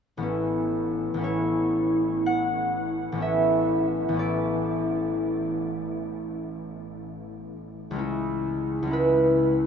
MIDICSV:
0, 0, Header, 1, 2, 480
1, 0, Start_track
1, 0, Key_signature, 3, "major"
1, 0, Tempo, 1000000
1, 128, Time_signature, 4, 2, 24, 8
1, 1091, Tempo, 956938
1, 3491, Tempo, 933126
1, 4451, Tempo, 993377
1, 4809, End_track
2, 0, Start_track
2, 0, Title_t, "Harp"
2, 0, Program_c, 0, 46
2, 83, Note_on_c, 0, 33, 50
2, 87, Note_on_c, 0, 59, 40
2, 98, Note_on_c, 0, 61, 36
2, 109, Note_on_c, 0, 64, 38
2, 541, Note_off_c, 0, 33, 0
2, 547, Note_on_c, 0, 33, 44
2, 554, Note_off_c, 0, 59, 0
2, 559, Note_on_c, 0, 59, 36
2, 563, Note_off_c, 0, 61, 0
2, 569, Note_on_c, 0, 61, 36
2, 575, Note_off_c, 0, 64, 0
2, 581, Note_on_c, 0, 64, 35
2, 594, Note_on_c, 0, 73, 61
2, 1086, Note_on_c, 0, 78, 70
2, 1511, Note_off_c, 0, 33, 0
2, 1517, Note_on_c, 0, 33, 49
2, 1526, Note_off_c, 0, 59, 0
2, 1532, Note_on_c, 0, 59, 40
2, 1537, Note_off_c, 0, 61, 0
2, 1543, Note_on_c, 0, 61, 39
2, 1551, Note_off_c, 0, 64, 0
2, 1557, Note_on_c, 0, 64, 39
2, 1566, Note_on_c, 0, 76, 57
2, 1908, Note_off_c, 0, 78, 0
2, 1995, Note_off_c, 0, 33, 0
2, 2001, Note_on_c, 0, 33, 53
2, 2011, Note_off_c, 0, 59, 0
2, 2017, Note_on_c, 0, 59, 41
2, 2022, Note_off_c, 0, 61, 0
2, 2028, Note_on_c, 0, 61, 39
2, 2034, Note_off_c, 0, 64, 0
2, 2040, Note_on_c, 0, 64, 38
2, 2053, Note_on_c, 0, 74, 71
2, 2528, Note_off_c, 0, 73, 0
2, 3523, Note_off_c, 0, 76, 0
2, 3928, Note_on_c, 0, 37, 54
2, 3941, Note_on_c, 0, 56, 45
2, 3948, Note_off_c, 0, 61, 0
2, 3954, Note_on_c, 0, 61, 43
2, 3961, Note_off_c, 0, 64, 0
2, 3967, Note_off_c, 0, 33, 0
2, 3968, Note_on_c, 0, 64, 45
2, 3986, Note_off_c, 0, 59, 0
2, 3994, Note_off_c, 0, 74, 0
2, 4394, Note_off_c, 0, 37, 0
2, 4400, Note_on_c, 0, 37, 53
2, 4408, Note_off_c, 0, 56, 0
2, 4414, Note_on_c, 0, 56, 42
2, 4417, Note_off_c, 0, 61, 0
2, 4424, Note_on_c, 0, 61, 40
2, 4435, Note_off_c, 0, 64, 0
2, 4441, Note_on_c, 0, 64, 42
2, 4454, Note_on_c, 0, 71, 64
2, 4809, Note_off_c, 0, 37, 0
2, 4809, Note_off_c, 0, 56, 0
2, 4809, Note_off_c, 0, 61, 0
2, 4809, Note_off_c, 0, 64, 0
2, 4809, Note_off_c, 0, 71, 0
2, 4809, End_track
0, 0, End_of_file